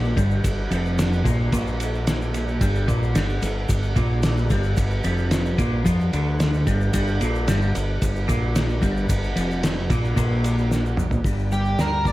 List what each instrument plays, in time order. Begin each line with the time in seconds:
Already playing: fingered electric bass A#1, clean electric guitar A#2, tonewheel organ G3 D4 A#4
0.04 shaker
0.17 fingered electric bass G1, clean electric guitar G2, kick, ride, shaker
0.31 shaker
0.44 fingered electric bass G1, clean electric guitar G2, kick, ride, shaker
0.71 fingered electric bass F1, clean electric guitar F2, ride, shaker
0.86 shaker
0.99 snare, ride, shaker
1.13 shaker
1.24 fingered electric bass A#1, clean electric guitar A#2, kick, ride, shaker
1.52 fingered electric bass A#1, clean electric guitar A#2, kick, ride, shaker
1.67 shaker
1.80 ride, shaker
1.94 shaker
2.07 snare, ride, shaker
2.22 shaker
2.34 ride, shaker
2.48 shaker
2.61 fingered electric bass G1, clean electric guitar G2, kick, ride, shaker
2.75 shaker
2.88 fingered electric bass A#1, clean electric guitar A#2, kick, ride, shaker
3.03 shaker
3.15 fingered electric bass G1, clean electric guitar G2, snare, ride, shaker
3.29 shaker
3.42 fingered electric bass G1, clean electric guitar G2, ride, shaker
3.69 fingered electric bass G1, clean electric guitar G2, kick, ride, shaker
3.83 shaker
3.96 fingered electric bass A#1, clean electric guitar A#2, kick, ride, shaker
4.23 snare, ride, shaker
4.37 shaker
4.50 fingered electric bass G1, clean electric guitar G2, kick, ride, shaker
4.63 shaker
4.77 fingered electric bass G1, clean electric guitar G2, kick, ride, shaker
4.91 shaker
5.04 fingered electric bass F1, clean electric guitar F2, ride, shaker
5.18 shaker
5.31 snare, ride, shaker
5.46 shaker
5.58 fingered electric bass A#1, clean electric guitar A#2, kick, ride, shaker
5.85 fingered electric bass F2, clean electric guitar F3, kick, ride, shaker
6.00 shaker
6.13 fingered electric bass D2, clean electric guitar D3, ride, shaker
6.40 snare, ride, shaker
6.54 shaker
6.67 fingered electric bass G1, clean electric guitar G2, kick, ride, shaker
6.81 shaker
6.93 fingered electric bass G1, clean electric guitar G2, kick, ride, shaker
7.07 shaker
7.21 fingered electric bass A#1, clean electric guitar A#2, ride, shaker
7.35 shaker
7.48 fingered electric bass G1, clean electric guitar G2, snare, ride, shaker
7.62 shaker
7.75 fingered electric bass G1, clean electric guitar G2, ride, shaker
8.02 fingered electric bass G1, clean electric guitar G2, kick, ride, shaker
8.16 shaker
8.28 fingered electric bass A#1, clean electric guitar A#2, kick, ride, shaker
8.56 snare, ride, shaker
8.69 shaker
8.82 fingered electric bass G1, clean electric guitar G2, kick, ride, shaker
8.97 shaker
9.09 fingered electric bass G1, clean electric guitar G2, kick, ride, shaker
9.24 shaker
9.36 fingered electric bass F1, clean electric guitar F2, ride, shaker
9.51 shaker
9.63 snare, ride, shaker
9.90 fingered electric bass A#1, clean electric guitar A#2, kick, ride, shaker
10.05 shaker
10.16 fingered electric bass A#1, clean electric guitar A#2, kick, ride, shaker
10.44 ride, shaker
10.58 shaker
10.71 snare, shaker
10.86 shaker
10.97 mid tom, shaker
11.11 floor tom, shaker
11.24 fingered electric bass G1, clean electric guitar G2, tonewheel organ G3 D4 A#4, kick, open hi-hat, shaker
11.39 shaker
11.52 clean electric guitar G3, lead electric guitar G4, shaker
11.65 shaker
11.79 fingered electric bass D2, clean electric guitar D4, lead electric guitar A#4, snare, open hi-hat, shaker
12.05 clean electric guitar A#3, lead electric guitar D5, kick, shaker